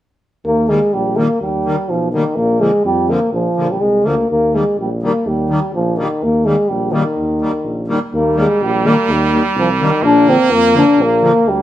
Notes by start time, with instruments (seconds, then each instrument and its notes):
0.45 tuba D#2, euphonium A#3
0.68 accordion D#3 G3 A#3, euphonium G#3
0.93 tuba A#1, euphonium G3
1.17 accordion D#3 G3 A#3, euphonium A#3
1.41 tuba D#2, euphonium G3
1.65 accordion D#3 G3 A#3
1.89 tuba B1, euphonium F3
2.12 euphonium D#3, accordion D#3 G3 A#3
2.36 tuba A#1, euphonium A#3
2.60 accordion D3 F3 A#3, euphonium G#3
2.84 tuba F2, euphonium G3
3.09 accordion D3 F3 A#3, euphonium A#3
3.32 tuba A#1, euphonium F3
3.56 tuba A#1, accordion D3 F3 A#3
3.71 euphonium G3
3.81 tuba C2, euphonium G#3
4.04 tuba D2, accordion D3 F3 A#3, euphonium A#3
4.29 tuba D#2, euphonium A#3
4.53 accordion D#3 G3 A#3, euphonium G#3
4.77 tuba A#1, euphonium G3
5.03 accordion D#3 G3 A#3, euphonium A#3
5.25 tuba D#2, euphonium G3
5.50 accordion D#3 G3 A#3
5.74 tuba A#1, euphonium F3
5.97 euphonium D#3, accordion D#3 G3 A#3
6.22 tuba D#2, euphonium A#3
6.46 accordion D#3 G3 A#3, euphonium G#3
6.69 tuba A#1, euphonium G3
6.92 accordion D#3 G3 A#3, euphonium D#3
7.16 tuba D#2
7.41 accordion D#3 G3 A#3
7.64 tuba A#1
7.87 accordion D#3 G3 A#3
8.13 tuba D#2, trumpet G3, euphonium A#3
8.35 accordion D#3 G3 A#3
8.40 euphonium G#3
8.61 tuba A#1, euphonium G3
8.84 accordion D#3 G3 A#3
8.88 euphonium A#3
9.08 tuba D#2, euphonium G3
9.32 accordion D#3 G3 A#3
9.55 tuba C2
9.60 euphonium F3
9.80 accordion D#3 G3 A#3, euphonium D#3
10.02 tuba A#1, trumpet A#3, euphonium D4
10.26 accordion D3 F3 A#3, euphonium C4
10.49 tuba F2, euphonium A#3
10.74 accordion D3 F3 A#3
10.78 euphonium D4
10.97 tuba A#1
11.02 euphonium A#3
11.21 accordion D3 F3 A#3
11.45 tuba D2, euphonium G3